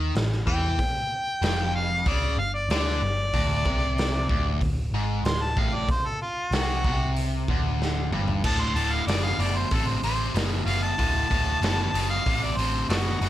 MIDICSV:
0, 0, Header, 1, 5, 480
1, 0, Start_track
1, 0, Tempo, 636943
1, 595, Time_signature, 4, 2, 24, 8
1, 10017, End_track
2, 0, Start_track
2, 0, Title_t, "Harmonica"
2, 0, Program_c, 0, 22
2, 355, Note_on_c, 0, 79, 91
2, 1286, Note_off_c, 0, 79, 0
2, 1319, Note_on_c, 0, 77, 86
2, 1550, Note_off_c, 0, 77, 0
2, 1565, Note_on_c, 0, 74, 83
2, 1793, Note_off_c, 0, 74, 0
2, 1799, Note_on_c, 0, 77, 81
2, 1909, Note_off_c, 0, 77, 0
2, 1918, Note_on_c, 0, 74, 86
2, 2028, Note_off_c, 0, 74, 0
2, 2039, Note_on_c, 0, 74, 101
2, 3448, Note_off_c, 0, 74, 0
2, 3964, Note_on_c, 0, 84, 91
2, 4085, Note_on_c, 0, 81, 86
2, 4096, Note_off_c, 0, 84, 0
2, 4205, Note_on_c, 0, 77, 76
2, 4216, Note_off_c, 0, 81, 0
2, 4329, Note_on_c, 0, 74, 87
2, 4341, Note_off_c, 0, 77, 0
2, 4435, Note_off_c, 0, 74, 0
2, 4455, Note_on_c, 0, 72, 81
2, 4567, Note_on_c, 0, 69, 77
2, 4579, Note_off_c, 0, 72, 0
2, 4674, Note_off_c, 0, 69, 0
2, 4688, Note_on_c, 0, 65, 79
2, 4926, Note_on_c, 0, 66, 91
2, 4937, Note_off_c, 0, 65, 0
2, 5387, Note_off_c, 0, 66, 0
2, 6370, Note_on_c, 0, 81, 92
2, 6487, Note_on_c, 0, 84, 83
2, 6499, Note_off_c, 0, 81, 0
2, 6603, Note_on_c, 0, 81, 77
2, 6614, Note_off_c, 0, 84, 0
2, 6726, Note_on_c, 0, 77, 81
2, 6737, Note_off_c, 0, 81, 0
2, 6834, Note_off_c, 0, 77, 0
2, 6837, Note_on_c, 0, 74, 80
2, 6955, Note_on_c, 0, 77, 84
2, 6967, Note_off_c, 0, 74, 0
2, 7090, Note_on_c, 0, 74, 79
2, 7101, Note_off_c, 0, 77, 0
2, 7203, Note_on_c, 0, 72, 84
2, 7214, Note_off_c, 0, 74, 0
2, 7335, Note_on_c, 0, 69, 81
2, 7347, Note_off_c, 0, 72, 0
2, 7438, Note_on_c, 0, 72, 74
2, 7449, Note_off_c, 0, 69, 0
2, 7550, Note_off_c, 0, 72, 0
2, 7565, Note_on_c, 0, 72, 88
2, 7795, Note_off_c, 0, 72, 0
2, 8041, Note_on_c, 0, 77, 85
2, 8152, Note_off_c, 0, 77, 0
2, 8164, Note_on_c, 0, 81, 95
2, 9093, Note_off_c, 0, 81, 0
2, 9117, Note_on_c, 0, 77, 93
2, 9364, Note_on_c, 0, 74, 82
2, 9375, Note_off_c, 0, 77, 0
2, 9476, Note_on_c, 0, 72, 74
2, 9488, Note_off_c, 0, 74, 0
2, 9711, Note_off_c, 0, 72, 0
2, 9719, Note_on_c, 0, 57, 67
2, 9719, Note_on_c, 0, 62, 67
2, 9719, Note_on_c, 0, 66, 96
2, 9764, Note_off_c, 0, 62, 0
2, 9767, Note_off_c, 0, 57, 0
2, 10017, Note_off_c, 0, 66, 0
2, 10017, End_track
3, 0, Start_track
3, 0, Title_t, "Overdriven electric guitar"
3, 0, Program_c, 1, 29
3, 0, Note_on_c, 1, 51, 94
3, 105, Note_off_c, 1, 51, 0
3, 114, Note_on_c, 1, 45, 68
3, 306, Note_off_c, 1, 45, 0
3, 353, Note_on_c, 1, 52, 94
3, 587, Note_off_c, 1, 52, 0
3, 1070, Note_on_c, 1, 41, 93
3, 1546, Note_off_c, 1, 41, 0
3, 1558, Note_on_c, 1, 49, 102
3, 1790, Note_off_c, 1, 49, 0
3, 1803, Note_on_c, 1, 43, 68
3, 1991, Note_off_c, 1, 43, 0
3, 2040, Note_on_c, 1, 50, 99
3, 2271, Note_off_c, 1, 50, 0
3, 2279, Note_on_c, 1, 43, 70
3, 2469, Note_off_c, 1, 43, 0
3, 2519, Note_on_c, 1, 38, 99
3, 2750, Note_off_c, 1, 38, 0
3, 2759, Note_on_c, 1, 48, 91
3, 3231, Note_off_c, 1, 48, 0
3, 3240, Note_on_c, 1, 38, 93
3, 3471, Note_off_c, 1, 38, 0
3, 3482, Note_on_c, 1, 38, 65
3, 3671, Note_off_c, 1, 38, 0
3, 3723, Note_on_c, 1, 44, 102
3, 3952, Note_off_c, 1, 44, 0
3, 3961, Note_on_c, 1, 38, 70
3, 4151, Note_off_c, 1, 38, 0
3, 4200, Note_on_c, 1, 45, 95
3, 4431, Note_off_c, 1, 45, 0
3, 4921, Note_on_c, 1, 48, 94
3, 5152, Note_off_c, 1, 48, 0
3, 5163, Note_on_c, 1, 48, 93
3, 5633, Note_off_c, 1, 48, 0
3, 5645, Note_on_c, 1, 38, 93
3, 6114, Note_off_c, 1, 38, 0
3, 6122, Note_on_c, 1, 43, 90
3, 6353, Note_off_c, 1, 43, 0
3, 6363, Note_on_c, 1, 38, 74
3, 6365, Note_on_c, 1, 45, 90
3, 6577, Note_off_c, 1, 38, 0
3, 6578, Note_off_c, 1, 45, 0
3, 6599, Note_on_c, 1, 38, 60
3, 6602, Note_on_c, 1, 45, 79
3, 6815, Note_off_c, 1, 38, 0
3, 6816, Note_off_c, 1, 45, 0
3, 6841, Note_on_c, 1, 38, 83
3, 6844, Note_on_c, 1, 47, 85
3, 7056, Note_off_c, 1, 38, 0
3, 7057, Note_off_c, 1, 47, 0
3, 7075, Note_on_c, 1, 38, 73
3, 7076, Note_on_c, 1, 47, 80
3, 7293, Note_off_c, 1, 38, 0
3, 7293, Note_off_c, 1, 47, 0
3, 7320, Note_on_c, 1, 38, 73
3, 7323, Note_on_c, 1, 48, 90
3, 7535, Note_off_c, 1, 38, 0
3, 7537, Note_off_c, 1, 48, 0
3, 7561, Note_on_c, 1, 38, 74
3, 7563, Note_on_c, 1, 48, 78
3, 7776, Note_off_c, 1, 38, 0
3, 7777, Note_off_c, 1, 48, 0
3, 7794, Note_on_c, 1, 38, 82
3, 7797, Note_on_c, 1, 47, 79
3, 8013, Note_off_c, 1, 38, 0
3, 8014, Note_off_c, 1, 47, 0
3, 8030, Note_on_c, 1, 38, 67
3, 8038, Note_on_c, 1, 47, 79
3, 8251, Note_off_c, 1, 38, 0
3, 8255, Note_off_c, 1, 47, 0
3, 8275, Note_on_c, 1, 38, 74
3, 8275, Note_on_c, 1, 45, 86
3, 8493, Note_off_c, 1, 38, 0
3, 8493, Note_off_c, 1, 45, 0
3, 8516, Note_on_c, 1, 38, 66
3, 8517, Note_on_c, 1, 45, 82
3, 8734, Note_off_c, 1, 38, 0
3, 8734, Note_off_c, 1, 45, 0
3, 8755, Note_on_c, 1, 38, 77
3, 8760, Note_on_c, 1, 47, 82
3, 8973, Note_off_c, 1, 38, 0
3, 8975, Note_off_c, 1, 47, 0
3, 8998, Note_on_c, 1, 38, 70
3, 9001, Note_on_c, 1, 47, 84
3, 9215, Note_off_c, 1, 38, 0
3, 9216, Note_off_c, 1, 47, 0
3, 9238, Note_on_c, 1, 38, 72
3, 9240, Note_on_c, 1, 48, 81
3, 9455, Note_off_c, 1, 38, 0
3, 9455, Note_off_c, 1, 48, 0
3, 9485, Note_on_c, 1, 38, 73
3, 9488, Note_on_c, 1, 48, 75
3, 9698, Note_off_c, 1, 38, 0
3, 9700, Note_off_c, 1, 48, 0
3, 9717, Note_on_c, 1, 38, 79
3, 9722, Note_on_c, 1, 47, 89
3, 9934, Note_off_c, 1, 38, 0
3, 9937, Note_off_c, 1, 47, 0
3, 9958, Note_on_c, 1, 38, 72
3, 9961, Note_on_c, 1, 47, 81
3, 10017, Note_off_c, 1, 38, 0
3, 10017, Note_off_c, 1, 47, 0
3, 10017, End_track
4, 0, Start_track
4, 0, Title_t, "Picked electric bass"
4, 0, Program_c, 2, 34
4, 0, Note_on_c, 2, 39, 89
4, 93, Note_off_c, 2, 39, 0
4, 107, Note_on_c, 2, 33, 81
4, 334, Note_off_c, 2, 33, 0
4, 355, Note_on_c, 2, 40, 85
4, 578, Note_off_c, 2, 40, 0
4, 1067, Note_on_c, 2, 29, 84
4, 1521, Note_off_c, 2, 29, 0
4, 1554, Note_on_c, 2, 37, 91
4, 1778, Note_off_c, 2, 37, 0
4, 1783, Note_on_c, 2, 31, 74
4, 2012, Note_off_c, 2, 31, 0
4, 2025, Note_on_c, 2, 38, 91
4, 2253, Note_off_c, 2, 38, 0
4, 2272, Note_on_c, 2, 31, 66
4, 2497, Note_off_c, 2, 31, 0
4, 2512, Note_on_c, 2, 26, 90
4, 2737, Note_off_c, 2, 26, 0
4, 2753, Note_on_c, 2, 36, 90
4, 3205, Note_off_c, 2, 36, 0
4, 3232, Note_on_c, 2, 26, 94
4, 3457, Note_off_c, 2, 26, 0
4, 3474, Note_on_c, 2, 26, 85
4, 3699, Note_off_c, 2, 26, 0
4, 3703, Note_on_c, 2, 32, 89
4, 3932, Note_off_c, 2, 32, 0
4, 3945, Note_on_c, 2, 26, 72
4, 4173, Note_off_c, 2, 26, 0
4, 4191, Note_on_c, 2, 33, 82
4, 4417, Note_off_c, 2, 33, 0
4, 4906, Note_on_c, 2, 36, 86
4, 5135, Note_off_c, 2, 36, 0
4, 5157, Note_on_c, 2, 36, 88
4, 5607, Note_off_c, 2, 36, 0
4, 5638, Note_on_c, 2, 26, 83
4, 6088, Note_off_c, 2, 26, 0
4, 6111, Note_on_c, 2, 31, 85
4, 6338, Note_off_c, 2, 31, 0
4, 6358, Note_on_c, 2, 26, 84
4, 6547, Note_off_c, 2, 26, 0
4, 6587, Note_on_c, 2, 26, 86
4, 6780, Note_off_c, 2, 26, 0
4, 6832, Note_on_c, 2, 30, 84
4, 7023, Note_off_c, 2, 30, 0
4, 7072, Note_on_c, 2, 30, 80
4, 7263, Note_off_c, 2, 30, 0
4, 7317, Note_on_c, 2, 33, 83
4, 7506, Note_off_c, 2, 33, 0
4, 7554, Note_on_c, 2, 33, 81
4, 7744, Note_off_c, 2, 33, 0
4, 7796, Note_on_c, 2, 30, 83
4, 7986, Note_off_c, 2, 30, 0
4, 8030, Note_on_c, 2, 30, 80
4, 8222, Note_off_c, 2, 30, 0
4, 8278, Note_on_c, 2, 26, 88
4, 8467, Note_off_c, 2, 26, 0
4, 8517, Note_on_c, 2, 26, 86
4, 8706, Note_off_c, 2, 26, 0
4, 8750, Note_on_c, 2, 30, 81
4, 8942, Note_off_c, 2, 30, 0
4, 8996, Note_on_c, 2, 30, 85
4, 9185, Note_off_c, 2, 30, 0
4, 9241, Note_on_c, 2, 33, 87
4, 9429, Note_off_c, 2, 33, 0
4, 9473, Note_on_c, 2, 33, 88
4, 9664, Note_off_c, 2, 33, 0
4, 9714, Note_on_c, 2, 30, 92
4, 9904, Note_off_c, 2, 30, 0
4, 9955, Note_on_c, 2, 30, 86
4, 10017, Note_off_c, 2, 30, 0
4, 10017, End_track
5, 0, Start_track
5, 0, Title_t, "Drums"
5, 115, Note_on_c, 9, 46, 47
5, 125, Note_on_c, 9, 38, 104
5, 191, Note_off_c, 9, 46, 0
5, 201, Note_off_c, 9, 38, 0
5, 244, Note_on_c, 9, 38, 28
5, 320, Note_off_c, 9, 38, 0
5, 355, Note_on_c, 9, 36, 98
5, 430, Note_off_c, 9, 36, 0
5, 595, Note_on_c, 9, 36, 96
5, 597, Note_on_c, 9, 46, 48
5, 670, Note_off_c, 9, 36, 0
5, 672, Note_off_c, 9, 46, 0
5, 1075, Note_on_c, 9, 46, 47
5, 1085, Note_on_c, 9, 38, 104
5, 1151, Note_off_c, 9, 46, 0
5, 1160, Note_off_c, 9, 38, 0
5, 1551, Note_on_c, 9, 46, 51
5, 1553, Note_on_c, 9, 36, 98
5, 1626, Note_off_c, 9, 46, 0
5, 1629, Note_off_c, 9, 36, 0
5, 2034, Note_on_c, 9, 46, 47
5, 2044, Note_on_c, 9, 38, 104
5, 2109, Note_off_c, 9, 46, 0
5, 2119, Note_off_c, 9, 38, 0
5, 2168, Note_on_c, 9, 38, 29
5, 2243, Note_off_c, 9, 38, 0
5, 2515, Note_on_c, 9, 36, 98
5, 2517, Note_on_c, 9, 46, 51
5, 2590, Note_off_c, 9, 36, 0
5, 2592, Note_off_c, 9, 46, 0
5, 2755, Note_on_c, 9, 36, 103
5, 2830, Note_off_c, 9, 36, 0
5, 3000, Note_on_c, 9, 46, 50
5, 3010, Note_on_c, 9, 38, 98
5, 3075, Note_off_c, 9, 46, 0
5, 3085, Note_off_c, 9, 38, 0
5, 3236, Note_on_c, 9, 36, 98
5, 3312, Note_off_c, 9, 36, 0
5, 3476, Note_on_c, 9, 36, 89
5, 3477, Note_on_c, 9, 46, 47
5, 3551, Note_off_c, 9, 36, 0
5, 3552, Note_off_c, 9, 46, 0
5, 3956, Note_on_c, 9, 46, 43
5, 3966, Note_on_c, 9, 38, 106
5, 4032, Note_off_c, 9, 46, 0
5, 4041, Note_off_c, 9, 38, 0
5, 4196, Note_on_c, 9, 36, 104
5, 4272, Note_off_c, 9, 36, 0
5, 4436, Note_on_c, 9, 36, 102
5, 4436, Note_on_c, 9, 46, 47
5, 4511, Note_off_c, 9, 36, 0
5, 4511, Note_off_c, 9, 46, 0
5, 4916, Note_on_c, 9, 46, 47
5, 4925, Note_on_c, 9, 38, 99
5, 4991, Note_off_c, 9, 46, 0
5, 5001, Note_off_c, 9, 38, 0
5, 5158, Note_on_c, 9, 36, 98
5, 5234, Note_off_c, 9, 36, 0
5, 5399, Note_on_c, 9, 46, 52
5, 5475, Note_off_c, 9, 46, 0
5, 5640, Note_on_c, 9, 36, 93
5, 5715, Note_off_c, 9, 36, 0
5, 5892, Note_on_c, 9, 38, 57
5, 5967, Note_off_c, 9, 38, 0
5, 6123, Note_on_c, 9, 45, 78
5, 6199, Note_off_c, 9, 45, 0
5, 6239, Note_on_c, 9, 43, 74
5, 6314, Note_off_c, 9, 43, 0
5, 6360, Note_on_c, 9, 36, 103
5, 6360, Note_on_c, 9, 49, 99
5, 6435, Note_off_c, 9, 49, 0
5, 6436, Note_off_c, 9, 36, 0
5, 6603, Note_on_c, 9, 46, 52
5, 6678, Note_off_c, 9, 46, 0
5, 6845, Note_on_c, 9, 46, 66
5, 6855, Note_on_c, 9, 38, 99
5, 6920, Note_off_c, 9, 46, 0
5, 6930, Note_off_c, 9, 38, 0
5, 7085, Note_on_c, 9, 46, 55
5, 7160, Note_off_c, 9, 46, 0
5, 7318, Note_on_c, 9, 46, 73
5, 7320, Note_on_c, 9, 36, 101
5, 7393, Note_off_c, 9, 46, 0
5, 7396, Note_off_c, 9, 36, 0
5, 7561, Note_on_c, 9, 46, 53
5, 7636, Note_off_c, 9, 46, 0
5, 7805, Note_on_c, 9, 46, 65
5, 7815, Note_on_c, 9, 38, 99
5, 7880, Note_off_c, 9, 46, 0
5, 7890, Note_off_c, 9, 38, 0
5, 8045, Note_on_c, 9, 46, 52
5, 8120, Note_off_c, 9, 46, 0
5, 8282, Note_on_c, 9, 36, 107
5, 8282, Note_on_c, 9, 46, 74
5, 8357, Note_off_c, 9, 36, 0
5, 8357, Note_off_c, 9, 46, 0
5, 8523, Note_on_c, 9, 36, 81
5, 8526, Note_on_c, 9, 46, 55
5, 8598, Note_off_c, 9, 36, 0
5, 8602, Note_off_c, 9, 46, 0
5, 8765, Note_on_c, 9, 46, 70
5, 8774, Note_on_c, 9, 38, 102
5, 8840, Note_off_c, 9, 46, 0
5, 8850, Note_off_c, 9, 38, 0
5, 9007, Note_on_c, 9, 46, 59
5, 9082, Note_off_c, 9, 46, 0
5, 9242, Note_on_c, 9, 36, 104
5, 9245, Note_on_c, 9, 46, 74
5, 9318, Note_off_c, 9, 36, 0
5, 9320, Note_off_c, 9, 46, 0
5, 9486, Note_on_c, 9, 46, 51
5, 9561, Note_off_c, 9, 46, 0
5, 9722, Note_on_c, 9, 46, 74
5, 9732, Note_on_c, 9, 38, 107
5, 9798, Note_off_c, 9, 46, 0
5, 9807, Note_off_c, 9, 38, 0
5, 9850, Note_on_c, 9, 38, 28
5, 9925, Note_off_c, 9, 38, 0
5, 9960, Note_on_c, 9, 46, 54
5, 10017, Note_off_c, 9, 46, 0
5, 10017, End_track
0, 0, End_of_file